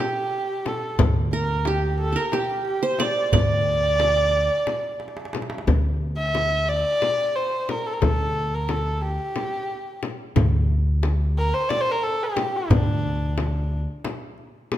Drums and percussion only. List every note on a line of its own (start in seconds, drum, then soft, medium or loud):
0.66 darbuka tek medium
0.66 frame drum medium
0.99 darbuka dum medium
0.99 frame drum loud
1.65 darbuka tek medium
1.65 frame drum medium
2.32 darbuka tek medium
2.32 frame drum medium
2.99 darbuka tek medium
2.99 frame drum medium
3.33 darbuka dum loud
3.33 frame drum medium
4.00 darbuka tek medium
4.00 frame drum medium
4.67 darbuka tek medium
4.67 frame drum medium
4.83 darbuka ka soft
5.00 darbuka tek medium
5.08 darbuka ka medium
5.17 darbuka tek medium
5.25 darbuka ka medium
5.33 darbuka tek medium
5.33 frame drum medium
5.42 darbuka ka medium
5.50 darbuka tek medium
5.58 darbuka ka medium
5.68 frame drum medium
6.35 frame drum medium
7.02 frame drum medium
7.69 frame drum medium
8.02 frame drum medium
8.69 frame drum medium
9.36 frame drum medium
10.03 frame drum medium
10.36 frame drum medium
10.36 darbuka dum loud
11.03 darbuka tek medium
11.03 frame drum medium
11.70 darbuka tek medium
11.70 frame drum medium
12.04 darbuka ka soft
12.36 darbuka tek medium
12.36 frame drum medium
12.70 darbuka dum loud
12.70 frame drum medium
13.38 darbuka tek medium
13.38 frame drum medium
14.05 darbuka tek medium
14.05 frame drum medium
14.38 darbuka ka soft
14.72 darbuka tek medium
14.72 frame drum medium